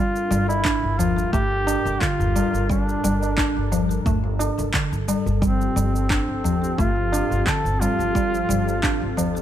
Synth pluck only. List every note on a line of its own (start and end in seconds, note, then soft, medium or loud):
0.00 0.29 G3 medium
0.31 0.41 G3 medium
0.65 0.82 D4 loud
0.99 1.16 F3 medium
1.33 1.44 A3 loud
1.67 1.85 D4 medium
2.01 2.19 D3 medium
2.36 2.53 G3 medium
2.70 3.02 G3 loud
3.04 3.14 G3 medium
3.38 3.55 D4 loud
3.72 3.89 F3 medium
4.06 4.16 A3 medium
4.40 4.57 D4 medium
4.74 4.91 D3 medium
5.08 5.26 G3 medium
5.42 5.75 G3 medium
5.76 5.87 G3 medium
6.10 6.28 D4 medium
6.44 6.62 F3 medium
6.78 6.89 A3 loud
7.13 7.30 D4 medium
7.47 7.64 D3 medium
7.81 7.99 G3 medium
8.15 8.48 G3 medium
8.49 8.59 G3 medium
8.83 9.01 D4 loud
9.17 9.35 F3 medium